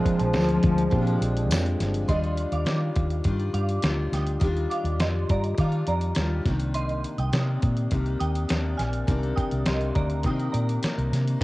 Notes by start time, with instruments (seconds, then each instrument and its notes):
Already playing: steel-string acoustic guitar A#2 F3 G#3 D4, bass clarinet F3, synth keys C4 D4 F4 G#4
0.05 kick, closed hi-hat
0.19 fingered electric bass A#1, closed hi-hat
0.33 fingered electric bass D2, steel-string acoustic guitar A#2 F3 G#3, snare, closed hi-hat, tambourine
0.38 steel-string acoustic guitar D4
0.49 closed hi-hat
0.63 fingered electric bass D2, kick, closed hi-hat
0.78 closed hi-hat
0.90 steel-string acoustic guitar A#2 F3, fingered electric bass A#2, synth keys C4 D4 F4 G4, kick, closed hi-hat
0.96 steel-string acoustic guitar G#3 D4
1.07 closed hi-hat
1.21 fingered electric bass A#1, closed hi-hat
1.37 closed hi-hat
1.51 fingered electric bass F2, snare, closed hi-hat, tambourine
1.66 closed hi-hat
1.80 fingered electric bass G1, snare, closed hi-hat
1.94 closed hi-hat
2.08 fingered electric bass D#2, steel-string acoustic guitar D#3 G3 D4 F4, synth bell D#5 C6, kick, closed hi-hat
2.24 closed hi-hat
2.38 closed hi-hat
2.52 fingered electric bass D#2, synth bell F5 D6, closed hi-hat
2.65 steel-string acoustic guitar D#3 G3 D4, fingered electric bass D#3, snare, closed hi-hat
2.69 steel-string acoustic guitar F4
2.96 fingered electric bass D#2, kick, closed hi-hat
3.11 closed hi-hat
3.24 fingered electric bass G2, steel-string acoustic guitar D#3 G3 D4 F4, kick, closed hi-hat
3.40 closed hi-hat
3.54 fingered electric bass G2, synth bell F5 D6, closed hi-hat
3.69 closed hi-hat
3.83 fingered electric bass D2, steel-string acoustic guitar D#3 G3 D4 F4, snare, closed hi-hat
4.12 fingered electric bass D2, synth bell G5 D#6, snare, closed hi-hat
4.27 closed hi-hat
4.40 fingered electric bass D#2, steel-string acoustic guitar D#3 G3, kick, closed hi-hat
4.44 steel-string acoustic guitar D4 F4
4.57 closed hi-hat
4.70 synth bell F5 D6, closed hi-hat
4.84 fingered electric bass D#2, closed hi-hat
5.00 fingered electric bass F2, synth bell D#5 C6, snare, closed hi-hat
5.29 fingered electric bass G2, synth bell D5 A#5, kick, closed hi-hat
5.44 closed hi-hat
5.58 steel-string acoustic guitar D#3 G3 D4 F4, fingered electric bass D#3, synth bell F5 D6, kick, closed hi-hat
5.72 closed hi-hat
5.87 fingered electric bass F2, synth bell D5 A#5, closed hi-hat
6.01 closed hi-hat
6.15 fingered electric bass D#2, steel-string acoustic guitar D#3 G3 D4, snare, closed hi-hat
6.19 steel-string acoustic guitar F4
6.46 fingered electric bass C2, steel-string acoustic guitar C3 D#3 A#3 D4, kick, snare, closed hi-hat
6.60 closed hi-hat
6.74 synth bell D#5 C6, closed hi-hat
6.89 closed hi-hat
7.04 closed hi-hat
7.18 fingered electric bass C2, synth bell G5 D#6, closed hi-hat
7.32 steel-string acoustic guitar C3 D#3 A#3 D4, fingered electric bass C3, snare, closed hi-hat
7.62 fingered electric bass A#2, kick, closed hi-hat
7.77 closed hi-hat
7.91 fingered electric bass C2, steel-string acoustic guitar C3 D#3 A#3 D4, kick, closed hi-hat
8.06 closed hi-hat
8.19 fingered electric bass D#2, synth bell G5 D#6, closed hi-hat
8.35 closed hi-hat
8.48 fingered electric bass D#2, steel-string acoustic guitar C3 D#3 A#3 D4, snare, closed hi-hat
8.77 fingered electric bass A#1, synth bell G#5 F6, snare, closed hi-hat
8.93 closed hi-hat
9.07 fingered electric bass C2, steel-string acoustic guitar C3 D#3 A#3 D4, kick, closed hi-hat
9.23 closed hi-hat
9.36 synth bell G5 D#6, kick, closed hi-hat
9.51 fingered electric bass C2, closed hi-hat
9.66 fingered electric bass C2, steel-string acoustic guitar C3 D#3 A#3 D4, synth bell D#5 C6, snare, closed hi-hat
9.81 closed hi-hat
9.95 fingered electric bass D2, synth bell D5 A#5, kick, closed hi-hat
10.10 closed hi-hat
10.23 steel-string acoustic guitar C3 D#3 A#3 D4, fingered electric bass C3, synth bell G5 D#6, kick, closed hi-hat
10.40 closed hi-hat
10.52 fingered electric bass A#2, synth bell D5 A#5, closed hi-hat
10.69 closed hi-hat
10.83 steel-string acoustic guitar C3 D#3 A#3 D4, muted fingered electric bass stroke, snare, closed hi-hat
10.98 fingered electric bass C2, closed hi-hat
11.12 fingered electric bass C3, snare, closed hi-hat
11.27 closed hi-hat